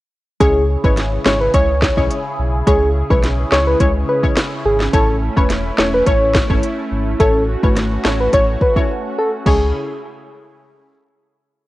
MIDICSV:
0, 0, Header, 1, 6, 480
1, 0, Start_track
1, 0, Key_signature, 4, "minor"
1, 0, Tempo, 566038
1, 345, Time_signature, 4, 2, 24, 8
1, 9901, End_track
2, 0, Start_track
2, 0, Title_t, "Soft synth lead"
2, 0, Program_c, 0, 80
2, 345, Note_on_c, 0, 68, 108
2, 540, Note_off_c, 0, 68, 0
2, 714, Note_on_c, 0, 71, 83
2, 805, Note_off_c, 0, 71, 0
2, 1066, Note_on_c, 0, 73, 89
2, 1169, Note_off_c, 0, 73, 0
2, 1194, Note_on_c, 0, 71, 83
2, 1285, Note_off_c, 0, 71, 0
2, 1308, Note_on_c, 0, 73, 100
2, 1652, Note_off_c, 0, 73, 0
2, 2265, Note_on_c, 0, 68, 103
2, 2460, Note_off_c, 0, 68, 0
2, 2635, Note_on_c, 0, 71, 74
2, 2725, Note_off_c, 0, 71, 0
2, 2987, Note_on_c, 0, 73, 87
2, 3090, Note_off_c, 0, 73, 0
2, 3115, Note_on_c, 0, 71, 85
2, 3205, Note_off_c, 0, 71, 0
2, 3228, Note_on_c, 0, 73, 96
2, 3330, Note_off_c, 0, 73, 0
2, 3468, Note_on_c, 0, 71, 79
2, 3570, Note_off_c, 0, 71, 0
2, 3949, Note_on_c, 0, 68, 89
2, 4050, Note_off_c, 0, 68, 0
2, 4187, Note_on_c, 0, 69, 107
2, 4381, Note_off_c, 0, 69, 0
2, 4557, Note_on_c, 0, 71, 88
2, 4647, Note_off_c, 0, 71, 0
2, 4909, Note_on_c, 0, 73, 92
2, 5011, Note_off_c, 0, 73, 0
2, 5038, Note_on_c, 0, 71, 80
2, 5127, Note_off_c, 0, 71, 0
2, 5150, Note_on_c, 0, 73, 98
2, 5493, Note_off_c, 0, 73, 0
2, 6107, Note_on_c, 0, 69, 108
2, 6301, Note_off_c, 0, 69, 0
2, 6475, Note_on_c, 0, 71, 76
2, 6566, Note_off_c, 0, 71, 0
2, 6828, Note_on_c, 0, 73, 89
2, 6930, Note_off_c, 0, 73, 0
2, 6957, Note_on_c, 0, 71, 82
2, 7047, Note_off_c, 0, 71, 0
2, 7070, Note_on_c, 0, 73, 91
2, 7171, Note_off_c, 0, 73, 0
2, 7310, Note_on_c, 0, 71, 81
2, 7411, Note_off_c, 0, 71, 0
2, 7790, Note_on_c, 0, 69, 86
2, 7891, Note_off_c, 0, 69, 0
2, 8031, Note_on_c, 0, 68, 91
2, 8251, Note_off_c, 0, 68, 0
2, 9901, End_track
3, 0, Start_track
3, 0, Title_t, "Analog synth pad"
3, 0, Program_c, 1, 89
3, 345, Note_on_c, 1, 61, 70
3, 346, Note_on_c, 1, 49, 78
3, 346, Note_on_c, 1, 64, 71
3, 346, Note_on_c, 1, 68, 85
3, 4152, Note_off_c, 1, 49, 0
3, 4152, Note_off_c, 1, 64, 0
3, 4152, Note_off_c, 1, 68, 0
3, 4186, Note_on_c, 1, 57, 78
3, 4186, Note_on_c, 1, 64, 86
3, 6086, Note_off_c, 1, 64, 0
3, 6104, Note_on_c, 1, 66, 83
3, 7991, Note_off_c, 1, 61, 0
3, 7992, Note_off_c, 1, 57, 0
3, 8005, Note_off_c, 1, 66, 0
3, 8025, Note_on_c, 1, 64, 68
3, 8026, Note_on_c, 1, 49, 75
3, 8026, Note_on_c, 1, 61, 67
3, 8026, Note_on_c, 1, 68, 79
3, 8248, Note_off_c, 1, 64, 0
3, 8249, Note_off_c, 1, 49, 0
3, 8249, Note_off_c, 1, 61, 0
3, 8249, Note_off_c, 1, 68, 0
3, 9901, End_track
4, 0, Start_track
4, 0, Title_t, "Synth stab"
4, 0, Program_c, 2, 62
4, 342, Note_on_c, 2, 56, 97
4, 344, Note_on_c, 2, 61, 86
4, 345, Note_on_c, 2, 64, 88
4, 346, Note_on_c, 2, 73, 109
4, 524, Note_off_c, 2, 56, 0
4, 525, Note_off_c, 2, 61, 0
4, 525, Note_off_c, 2, 64, 0
4, 526, Note_off_c, 2, 73, 0
4, 711, Note_on_c, 2, 56, 78
4, 713, Note_on_c, 2, 61, 74
4, 714, Note_on_c, 2, 64, 73
4, 716, Note_on_c, 2, 73, 89
4, 1037, Note_off_c, 2, 56, 0
4, 1038, Note_off_c, 2, 61, 0
4, 1039, Note_off_c, 2, 64, 0
4, 1040, Note_off_c, 2, 73, 0
4, 1063, Note_on_c, 2, 56, 82
4, 1065, Note_on_c, 2, 61, 73
4, 1067, Note_on_c, 2, 64, 75
4, 1069, Note_on_c, 2, 73, 88
4, 1286, Note_off_c, 2, 56, 0
4, 1287, Note_off_c, 2, 61, 0
4, 1288, Note_off_c, 2, 64, 0
4, 1289, Note_off_c, 2, 73, 0
4, 1304, Note_on_c, 2, 56, 97
4, 1304, Note_on_c, 2, 61, 88
4, 1306, Note_on_c, 2, 64, 87
4, 1308, Note_on_c, 2, 73, 106
4, 1641, Note_off_c, 2, 56, 0
4, 1641, Note_off_c, 2, 61, 0
4, 1642, Note_off_c, 2, 64, 0
4, 1643, Note_off_c, 2, 73, 0
4, 1670, Note_on_c, 2, 56, 79
4, 1672, Note_on_c, 2, 61, 72
4, 1674, Note_on_c, 2, 64, 70
4, 1675, Note_on_c, 2, 73, 85
4, 1844, Note_off_c, 2, 56, 0
4, 1845, Note_off_c, 2, 61, 0
4, 1846, Note_off_c, 2, 64, 0
4, 1846, Note_off_c, 2, 73, 0
4, 2262, Note_on_c, 2, 56, 97
4, 2264, Note_on_c, 2, 61, 91
4, 2265, Note_on_c, 2, 64, 86
4, 2267, Note_on_c, 2, 73, 105
4, 2444, Note_off_c, 2, 56, 0
4, 2445, Note_off_c, 2, 61, 0
4, 2445, Note_off_c, 2, 64, 0
4, 2446, Note_off_c, 2, 73, 0
4, 2630, Note_on_c, 2, 56, 79
4, 2632, Note_on_c, 2, 61, 70
4, 2633, Note_on_c, 2, 64, 71
4, 2634, Note_on_c, 2, 73, 89
4, 2957, Note_off_c, 2, 56, 0
4, 2958, Note_off_c, 2, 61, 0
4, 2958, Note_off_c, 2, 64, 0
4, 2959, Note_off_c, 2, 73, 0
4, 2983, Note_on_c, 2, 56, 80
4, 2985, Note_on_c, 2, 61, 71
4, 2986, Note_on_c, 2, 64, 73
4, 2989, Note_on_c, 2, 73, 87
4, 3206, Note_off_c, 2, 56, 0
4, 3207, Note_off_c, 2, 61, 0
4, 3208, Note_off_c, 2, 64, 0
4, 3209, Note_off_c, 2, 73, 0
4, 3223, Note_on_c, 2, 56, 95
4, 3225, Note_on_c, 2, 61, 87
4, 3227, Note_on_c, 2, 64, 86
4, 3229, Note_on_c, 2, 73, 99
4, 3561, Note_off_c, 2, 56, 0
4, 3562, Note_off_c, 2, 61, 0
4, 3563, Note_off_c, 2, 64, 0
4, 3564, Note_off_c, 2, 73, 0
4, 3588, Note_on_c, 2, 56, 78
4, 3589, Note_on_c, 2, 61, 72
4, 3592, Note_on_c, 2, 64, 74
4, 3594, Note_on_c, 2, 73, 86
4, 3763, Note_off_c, 2, 56, 0
4, 3764, Note_off_c, 2, 61, 0
4, 3765, Note_off_c, 2, 64, 0
4, 3766, Note_off_c, 2, 73, 0
4, 4182, Note_on_c, 2, 57, 94
4, 4184, Note_on_c, 2, 61, 87
4, 4185, Note_on_c, 2, 64, 84
4, 4187, Note_on_c, 2, 73, 107
4, 4364, Note_off_c, 2, 57, 0
4, 4365, Note_off_c, 2, 61, 0
4, 4365, Note_off_c, 2, 64, 0
4, 4366, Note_off_c, 2, 73, 0
4, 4549, Note_on_c, 2, 57, 79
4, 4551, Note_on_c, 2, 61, 74
4, 4552, Note_on_c, 2, 64, 70
4, 4554, Note_on_c, 2, 73, 91
4, 4876, Note_off_c, 2, 57, 0
4, 4877, Note_off_c, 2, 61, 0
4, 4878, Note_off_c, 2, 64, 0
4, 4879, Note_off_c, 2, 73, 0
4, 4901, Note_on_c, 2, 57, 80
4, 4902, Note_on_c, 2, 61, 75
4, 4904, Note_on_c, 2, 64, 73
4, 4905, Note_on_c, 2, 73, 88
4, 5125, Note_off_c, 2, 57, 0
4, 5125, Note_off_c, 2, 61, 0
4, 5126, Note_off_c, 2, 64, 0
4, 5127, Note_off_c, 2, 73, 0
4, 5142, Note_on_c, 2, 57, 94
4, 5144, Note_on_c, 2, 61, 88
4, 5145, Note_on_c, 2, 64, 85
4, 5146, Note_on_c, 2, 73, 104
4, 5480, Note_off_c, 2, 57, 0
4, 5481, Note_off_c, 2, 61, 0
4, 5482, Note_off_c, 2, 64, 0
4, 5482, Note_off_c, 2, 73, 0
4, 5510, Note_on_c, 2, 57, 83
4, 5512, Note_on_c, 2, 61, 74
4, 5514, Note_on_c, 2, 64, 71
4, 5515, Note_on_c, 2, 73, 85
4, 5684, Note_off_c, 2, 57, 0
4, 5685, Note_off_c, 2, 61, 0
4, 5686, Note_off_c, 2, 64, 0
4, 5686, Note_off_c, 2, 73, 0
4, 6104, Note_on_c, 2, 57, 92
4, 6106, Note_on_c, 2, 61, 90
4, 6107, Note_on_c, 2, 64, 88
4, 6109, Note_on_c, 2, 73, 104
4, 6285, Note_off_c, 2, 57, 0
4, 6286, Note_off_c, 2, 61, 0
4, 6286, Note_off_c, 2, 64, 0
4, 6288, Note_off_c, 2, 73, 0
4, 6470, Note_on_c, 2, 57, 79
4, 6472, Note_on_c, 2, 61, 71
4, 6473, Note_on_c, 2, 64, 71
4, 6475, Note_on_c, 2, 73, 85
4, 6797, Note_off_c, 2, 57, 0
4, 6798, Note_off_c, 2, 61, 0
4, 6798, Note_off_c, 2, 64, 0
4, 6799, Note_off_c, 2, 73, 0
4, 6821, Note_on_c, 2, 57, 82
4, 6823, Note_on_c, 2, 61, 72
4, 6825, Note_on_c, 2, 64, 75
4, 6827, Note_on_c, 2, 73, 85
4, 7045, Note_off_c, 2, 57, 0
4, 7046, Note_off_c, 2, 61, 0
4, 7047, Note_off_c, 2, 64, 0
4, 7048, Note_off_c, 2, 73, 0
4, 7062, Note_on_c, 2, 57, 97
4, 7065, Note_on_c, 2, 61, 86
4, 7067, Note_on_c, 2, 64, 84
4, 7068, Note_on_c, 2, 73, 105
4, 7400, Note_off_c, 2, 57, 0
4, 7402, Note_off_c, 2, 61, 0
4, 7402, Note_off_c, 2, 64, 0
4, 7403, Note_off_c, 2, 73, 0
4, 7429, Note_on_c, 2, 57, 78
4, 7431, Note_on_c, 2, 61, 73
4, 7433, Note_on_c, 2, 64, 74
4, 7434, Note_on_c, 2, 73, 88
4, 7543, Note_off_c, 2, 57, 0
4, 7544, Note_off_c, 2, 61, 0
4, 7545, Note_off_c, 2, 64, 0
4, 7546, Note_off_c, 2, 73, 0
4, 8021, Note_on_c, 2, 56, 86
4, 8024, Note_on_c, 2, 61, 83
4, 8027, Note_on_c, 2, 64, 80
4, 8029, Note_on_c, 2, 73, 98
4, 8204, Note_off_c, 2, 56, 0
4, 8206, Note_off_c, 2, 61, 0
4, 8207, Note_off_c, 2, 64, 0
4, 8208, Note_off_c, 2, 73, 0
4, 9901, End_track
5, 0, Start_track
5, 0, Title_t, "Sub bass"
5, 0, Program_c, 3, 38
5, 344, Note_on_c, 3, 37, 103
5, 650, Note_off_c, 3, 37, 0
5, 712, Note_on_c, 3, 32, 89
5, 1006, Note_off_c, 3, 32, 0
5, 1065, Note_on_c, 3, 32, 98
5, 1265, Note_off_c, 3, 32, 0
5, 1305, Note_on_c, 3, 37, 99
5, 1611, Note_off_c, 3, 37, 0
5, 1671, Note_on_c, 3, 35, 89
5, 1765, Note_off_c, 3, 35, 0
5, 2025, Note_on_c, 3, 35, 92
5, 2225, Note_off_c, 3, 35, 0
5, 2264, Note_on_c, 3, 37, 109
5, 2571, Note_off_c, 3, 37, 0
5, 2632, Note_on_c, 3, 35, 90
5, 2926, Note_off_c, 3, 35, 0
5, 2985, Note_on_c, 3, 37, 103
5, 3185, Note_off_c, 3, 37, 0
5, 3225, Note_on_c, 3, 37, 101
5, 3425, Note_off_c, 3, 37, 0
5, 3944, Note_on_c, 3, 32, 102
5, 4145, Note_off_c, 3, 32, 0
5, 4184, Note_on_c, 3, 33, 106
5, 4490, Note_off_c, 3, 33, 0
5, 4552, Note_on_c, 3, 28, 94
5, 4846, Note_off_c, 3, 28, 0
5, 4906, Note_on_c, 3, 28, 96
5, 5105, Note_off_c, 3, 28, 0
5, 5144, Note_on_c, 3, 33, 90
5, 5451, Note_off_c, 3, 33, 0
5, 5511, Note_on_c, 3, 32, 89
5, 5606, Note_off_c, 3, 32, 0
5, 5864, Note_on_c, 3, 32, 93
5, 6065, Note_off_c, 3, 32, 0
5, 6104, Note_on_c, 3, 33, 106
5, 6411, Note_off_c, 3, 33, 0
5, 6473, Note_on_c, 3, 32, 90
5, 6767, Note_off_c, 3, 32, 0
5, 6825, Note_on_c, 3, 33, 92
5, 7025, Note_off_c, 3, 33, 0
5, 7065, Note_on_c, 3, 33, 105
5, 7265, Note_off_c, 3, 33, 0
5, 8025, Note_on_c, 3, 37, 97
5, 8248, Note_off_c, 3, 37, 0
5, 9901, End_track
6, 0, Start_track
6, 0, Title_t, "Drums"
6, 344, Note_on_c, 9, 36, 108
6, 344, Note_on_c, 9, 42, 67
6, 429, Note_off_c, 9, 36, 0
6, 429, Note_off_c, 9, 42, 0
6, 713, Note_on_c, 9, 36, 99
6, 797, Note_off_c, 9, 36, 0
6, 824, Note_on_c, 9, 42, 76
6, 826, Note_on_c, 9, 38, 66
6, 909, Note_off_c, 9, 42, 0
6, 911, Note_off_c, 9, 38, 0
6, 1066, Note_on_c, 9, 38, 117
6, 1151, Note_off_c, 9, 38, 0
6, 1303, Note_on_c, 9, 42, 73
6, 1305, Note_on_c, 9, 36, 97
6, 1388, Note_off_c, 9, 42, 0
6, 1390, Note_off_c, 9, 36, 0
6, 1543, Note_on_c, 9, 36, 89
6, 1543, Note_on_c, 9, 38, 110
6, 1628, Note_off_c, 9, 36, 0
6, 1628, Note_off_c, 9, 38, 0
6, 1671, Note_on_c, 9, 36, 83
6, 1756, Note_off_c, 9, 36, 0
6, 1784, Note_on_c, 9, 42, 77
6, 1869, Note_off_c, 9, 42, 0
6, 2265, Note_on_c, 9, 36, 107
6, 2265, Note_on_c, 9, 42, 66
6, 2350, Note_off_c, 9, 36, 0
6, 2350, Note_off_c, 9, 42, 0
6, 2633, Note_on_c, 9, 36, 107
6, 2717, Note_off_c, 9, 36, 0
6, 2744, Note_on_c, 9, 42, 77
6, 2746, Note_on_c, 9, 38, 61
6, 2829, Note_off_c, 9, 42, 0
6, 2831, Note_off_c, 9, 38, 0
6, 2986, Note_on_c, 9, 38, 127
6, 3071, Note_off_c, 9, 38, 0
6, 3224, Note_on_c, 9, 42, 77
6, 3225, Note_on_c, 9, 36, 94
6, 3309, Note_off_c, 9, 42, 0
6, 3310, Note_off_c, 9, 36, 0
6, 3591, Note_on_c, 9, 36, 81
6, 3676, Note_off_c, 9, 36, 0
6, 3704, Note_on_c, 9, 38, 116
6, 3704, Note_on_c, 9, 42, 75
6, 3789, Note_off_c, 9, 38, 0
6, 3789, Note_off_c, 9, 42, 0
6, 4073, Note_on_c, 9, 38, 74
6, 4158, Note_off_c, 9, 38, 0
6, 4184, Note_on_c, 9, 36, 109
6, 4184, Note_on_c, 9, 42, 64
6, 4269, Note_off_c, 9, 36, 0
6, 4269, Note_off_c, 9, 42, 0
6, 4552, Note_on_c, 9, 36, 107
6, 4637, Note_off_c, 9, 36, 0
6, 4663, Note_on_c, 9, 42, 82
6, 4665, Note_on_c, 9, 38, 67
6, 4748, Note_off_c, 9, 42, 0
6, 4749, Note_off_c, 9, 38, 0
6, 4905, Note_on_c, 9, 38, 121
6, 4990, Note_off_c, 9, 38, 0
6, 5143, Note_on_c, 9, 42, 75
6, 5145, Note_on_c, 9, 36, 96
6, 5228, Note_off_c, 9, 42, 0
6, 5230, Note_off_c, 9, 36, 0
6, 5383, Note_on_c, 9, 36, 94
6, 5383, Note_on_c, 9, 38, 111
6, 5468, Note_off_c, 9, 36, 0
6, 5468, Note_off_c, 9, 38, 0
6, 5511, Note_on_c, 9, 36, 86
6, 5596, Note_off_c, 9, 36, 0
6, 5624, Note_on_c, 9, 42, 76
6, 5708, Note_off_c, 9, 42, 0
6, 6105, Note_on_c, 9, 36, 113
6, 6106, Note_on_c, 9, 42, 67
6, 6190, Note_off_c, 9, 36, 0
6, 6190, Note_off_c, 9, 42, 0
6, 6473, Note_on_c, 9, 36, 104
6, 6558, Note_off_c, 9, 36, 0
6, 6584, Note_on_c, 9, 42, 76
6, 6586, Note_on_c, 9, 37, 66
6, 6586, Note_on_c, 9, 38, 67
6, 6669, Note_off_c, 9, 42, 0
6, 6671, Note_off_c, 9, 37, 0
6, 6671, Note_off_c, 9, 38, 0
6, 6825, Note_on_c, 9, 38, 121
6, 6910, Note_off_c, 9, 38, 0
6, 7064, Note_on_c, 9, 42, 75
6, 7065, Note_on_c, 9, 36, 93
6, 7148, Note_off_c, 9, 42, 0
6, 7150, Note_off_c, 9, 36, 0
6, 7303, Note_on_c, 9, 36, 89
6, 7388, Note_off_c, 9, 36, 0
6, 7431, Note_on_c, 9, 36, 85
6, 7515, Note_off_c, 9, 36, 0
6, 8024, Note_on_c, 9, 49, 85
6, 8025, Note_on_c, 9, 36, 103
6, 8109, Note_off_c, 9, 49, 0
6, 8110, Note_off_c, 9, 36, 0
6, 9901, End_track
0, 0, End_of_file